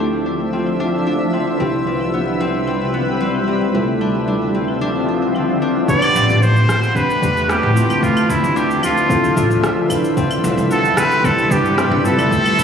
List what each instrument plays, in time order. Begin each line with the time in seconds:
Already playing: upright bass D2, ambient pad D3 F3 E5, harp C4, fm electric piano C4 E4 F4 A4
0.00 harp D4
0.26 harp D4
0.53 harp C4
0.66 claves
0.80 harp D4
1.07 harp D4
1.33 harp C4, claves
1.57 upright bass C2, ambient pad C3 G3 B4, harp C4, fm electric piano D4 E4 B4
1.62 fm electric piano G4
1.87 harp C4
2.00 claves
2.14 harp B3
2.40 harp C4
2.67 harp C4, claves
2.94 harp B3
3.20 harp C4
3.34 claves
3.47 harp C4
3.72 upright bass D2, ambient pad D3 F3 C4, fm electric piano C4 E4 F4, harp C4
3.76 fm electric piano A4
4.01 harp D4, claves
4.28 harp D4
4.54 harp C4
4.68 claves
4.81 harp D4
5.08 harp D4
5.35 harp C4, claves
5.62 harp D4
5.88 ambient pad A3 G4, harp B3, fm electric piano D4 G4 B4, muted trumpet D5, kick, cabasa
6.02 cabasa, claves
6.15 upright bass A1, harp C4, cabasa
6.29 upright bass A1, cabasa
6.42 harp C4, muted trumpet C5, cabasa
6.56 cabasa
6.69 upright bass A1, harp B3, cross-stick, cabasa
6.83 cabasa
6.94 fm electric piano C4 D4 G4 B4, harp C4, muted trumpet B4, kick, cabasa
7.10 cabasa
7.22 upright bass E2, harp C4, fm electric piano D4 G4 B4, kick, cabasa
7.37 cabasa
7.49 harp B3, muted trumpet G4, cross-stick, cabasa
7.63 upright bass A2
7.73 fm electric piano C4 E4 F4, harp C4, cabasa
7.78 fm electric piano B4
7.90 upright bass D2, cabasa, claves
8.02 ambient pad D3 F3 E5, harp D4, muted trumpet F4, kick, cabasa
8.17 cabasa, claves
8.29 upright bass D2, harp C4, muted trumpet E4, kick, cabasa
8.44 upright bass D2, cabasa
8.56 harp D4, muted trumpet G4, cabasa
8.71 cabasa
8.83 upright bass D2, harp D4, muted trumpet F4, cabasa, claves
8.97 cabasa
9.08 fm electric piano C4 E4 F4 A4, harp C4, kick, cabasa
9.24 upright bass D2, cabasa
9.35 upright bass A1, fm electric piano C4 F4 A4 E5, harp D4, kick, cabasa
9.50 upright bass D2, cabasa
9.63 harp D4, cross-stick, cabasa
9.88 harp C4, fm electric piano D4 E4 B4, kick, cabasa, claves
9.92 fm electric piano A4
10.04 cabasa
10.17 ambient pad C3 G3 B4, harp C4, kick, cabasa
10.31 cabasa, claves
10.44 upright bass C2, harp C4, cabasa
10.57 upright bass C2, cabasa
10.70 harp B3, muted trumpet A4, cabasa
10.85 cabasa
10.97 upright bass C2, harp C4, muted trumpet B4, cross-stick, cabasa
11.12 cabasa
11.23 fm electric piano B3 D4 E4 G4, harp C4, muted trumpet A4, kick, cabasa
11.38 cabasa
11.49 upright bass G1, harp B3, fm electric piano D4 E4 G4 B4, muted trumpet G4, kick, cabasa
11.66 cabasa
11.78 harp C4, muted trumpet G4, cross-stick, cabasa
11.91 upright bass G1
12.02 fm electric piano C4 E4 F4, harp C4, muted trumpet A4, cabasa
12.06 fm electric piano B4
12.18 upright bass D2, cabasa, claves
12.31 ambient pad D3 F3 C4, harp C4, kick, cabasa
12.46 cabasa, claves
12.58 upright bass D2, harp D4, kick, cabasa